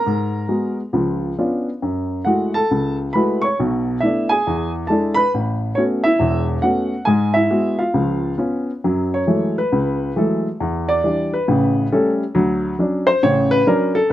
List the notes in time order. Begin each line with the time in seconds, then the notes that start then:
Already playing: A#4 A#5
0.06 G#2
0.48 G#3 B3 F#4
0.93 C#2 F3
1.38 B3 C#4 D4 F4
1.82 F#2
2.25 G#3 A3 E4 F#4 F#5
2.54 A4 A5
2.71 C#2
3.13 G#3 A3 E4 F#4 B4 B5
3.42 C#5 C#6
3.60 B1 B2
4.00 A3 B3 D4 E4 E5
4.29 G#4 G#5
4.47 E2
4.87 G#3 D4 E4 A4 A5
5.14 B4 B5
5.34 A1
5.75 A3 B3 C#4 F#4 C#5
6.04 E4 E5
6.19 E1 E2
6.62 A3 B3 C#4 F#4 F#5
7.05 G#2 G#3 G#4 G#5
7.34 E4 E5
7.50 G#3 B3 F#4
7.79 F4 F5
7.94 C#2 F3
8.38 B3 C#4 F4
8.84 F#2 F#3
9.14 C#5
9.27 E3 F#3 G#3 A3
9.58 B4
9.72 C#2
10.16 E3 F#3 G#3 A3 A4
10.60 E2
10.89 D5
11.04 E3 G3 D4
11.34 B4
11.48 A1 C#3
11.92 G3 A3 C#4 A4
12.35 D2 F#3
12.79 F#3 C#4 D4
13.07 C5
13.23 A1 C#3 C#5
13.51 B4
13.67 F#3 C#4 D4 A#4
13.95 A4